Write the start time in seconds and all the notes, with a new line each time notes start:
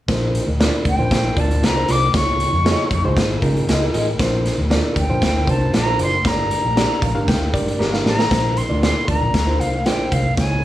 0.08 A#1 A#2 D4 F4 A#4 C5, kick, snare, closed hi-hat
0.35 closed hi-hat
0.47 D2
0.60 D4 F4 A#4 C5 D5, snare, closed hi-hat
0.85 D2 G5, kick, closed hi-hat
0.98 A#1 D4 F4 A#4 C5
1.11 kick, snare, closed hi-hat
1.37 D2 D4 F4 A#4 D5 A5, kick, closed hi-hat
1.51 closed hi-hat
1.62 C2 F4 C5 D5 A#5, snare, closed hi-hat
1.75 D4 F4 A#4 C5
1.88 C2 F4 C5 D5 D6, closed hi-hat
2.14 C#2 C#3 D#4 F4 G#4 C#5 C#6, kick, snare, closed hi-hat
2.40 closed hi-hat
2.53 F2
2.65 D#4 F4 G#4 C#5 D#5, snare, closed hi-hat
2.91 F2, kick, closed hi-hat
3.04 C#2 D#4 F4 G#4 C5
3.17 G#1, kick, snare, closed hi-hat
3.42 C#3 D#4 F4 G#4 A#4, kick, closed hi-hat
3.56 closed hi-hat
3.68 C#2 F4 G#4 D#5, snare, closed hi-hat
3.80 D#4 F4 G#4 A#4
3.93 A1 F4 G#4 D#5, closed hi-hat
4.19 A#1 A#2 D4 F4 A#4 C5, kick, snare, closed hi-hat
4.46 snare, closed hi-hat
4.58 D2
4.70 D4 F4 A#4 C5 D5, snare, closed hi-hat
4.96 D2 G5, kick, closed hi-hat
5.09 A#1 D4 F4 A#4 C5
5.22 D2, kick, snare, closed hi-hat
5.47 C2 D4 F4 A#4 C5 A5, kick, closed hi-hat
5.73 A#1 F4 C5 D5 A#5, snare, closed hi-hat
5.86 D4 F4 A#4 C5
5.99 F#1 F4 C5 D5 C6, closed hi-hat
6.25 G1 G2 D4 G4 A#4 C#5 A#5, kick, snare, closed hi-hat
6.32 D5
6.51 closed hi-hat
6.65 A#1
6.76 D4 G4 A#4 D5, snare, closed hi-hat
7.02 A#1 F5, kick, closed hi-hat
7.15 G1 D4 G4 A#4 F5
7.28 D2 G5, kick, snare, closed hi-hat
7.53 G2 D4 G4 A#4 D5, kick, closed hi-hat
7.68 closed hi-hat
7.79 G1 G4 A#4 D5 A#5, snare
7.92 D4 G4 A#4 F5, snare
8.05 A1 G4 A#4 D5 A#5, snare
8.19 snare
8.31 A#1 A#2 D4 F4 A#4 C5, kick, snare, closed hi-hat
8.57 C6, closed hi-hat
8.69 D2 D4 F4 A#4 D5
8.82 F4 C5 D5 C6, snare, closed hi-hat
9.08 D2 D4 F4 A#4 D5 A#5, kick, closed hi-hat
9.21 A#1
9.34 D2, kick, snare, closed hi-hat
9.47 D4 F4 A#4 C5
9.59 C2 F5, closed hi-hat
9.85 A#1 D4 F4 A#4 C5 D5 G5, snare, closed hi-hat
10.12 C2 F5, kick, closed hi-hat
10.37 C#2 C#3 D#4 F4 G#4 C#5 G#5, kick, snare, closed hi-hat